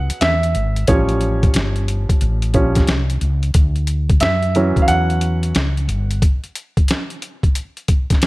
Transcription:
Already playing: upright piano F#3 G#3 B3 C#4 F#5
0.10 muted fretless electric bass stroke, closed hi-hat
0.21 fretless electric bass E2, upright piano E5, snare, closed hi-hat
0.43 closed hi-hat
0.55 fretless electric bass G#1, closed hi-hat
0.76 closed hi-hat
0.87 fretless electric bass A1, upright piano F3 G3 C#4 C#5, kick, closed hi-hat
1.09 closed hi-hat
1.21 closed hi-hat
1.43 kick, closed hi-hat
1.54 fretless electric bass G1, snare, closed hi-hat
1.76 closed hi-hat
1.88 closed hi-hat
2.09 muted fretless electric bass stroke, kick, closed hi-hat
2.21 fretless electric bass A1, closed hi-hat
2.42 closed hi-hat
2.54 fretless electric bass A#1, upright piano F3 G3 C#4, kick, closed hi-hat
2.75 kick, snare, closed hi-hat
2.87 fretless electric bass C2, snare, closed hi-hat
3.10 closed hi-hat
3.21 fretless electric bass C#2, closed hi-hat
3.43 closed hi-hat
3.54 fretless electric bass D2, kick, closed hi-hat
3.76 closed hi-hat
3.87 closed hi-hat
4.09 kick, closed hi-hat
4.20 fretless electric bass F#2, upright piano E5, snare, closed hi-hat
4.43 closed hi-hat
4.55 upright piano E3 F#3 C#4, closed hi-hat
4.76 muted fretless electric bass stroke, kick, closed hi-hat
4.82 upright piano F5
4.88 fretless electric bass E2, upright piano F#5, closed hi-hat
5.10 closed hi-hat
5.21 closed hi-hat
5.43 closed hi-hat
5.55 fretless electric bass C#2, snare, closed hi-hat
5.77 closed hi-hat
5.88 fretless electric bass G1, closed hi-hat
6.11 closed hi-hat
6.22 kick, closed hi-hat
6.44 closed hi-hat
6.55 closed hi-hat
6.77 kick, closed hi-hat
6.88 snare, closed hi-hat
7.10 closed hi-hat
7.22 closed hi-hat
7.43 kick, closed hi-hat
7.55 closed hi-hat
7.77 closed hi-hat
7.88 kick, closed hi-hat
8.10 kick, snare, closed hi-hat
8.22 snare, closed hi-hat

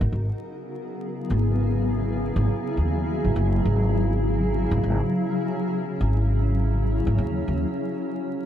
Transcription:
Already playing: ambient pad C#3 F#3 B3 E4 F#4 G#4 A#4
0.01 upright bass G#1
0.12 upright bass G#1
1.30 upright bass G#1
2.36 upright bass G#1
2.77 upright bass D#2
3.24 upright bass G#1
3.36 upright bass F#1
3.55 ambient pad C#4
3.65 upright bass G#1
4.71 upright bass G#1
4.83 upright bass G#1
6.01 upright bass G#1
7.07 upright bass G#1
7.18 upright bass D#2
7.48 upright bass D#2

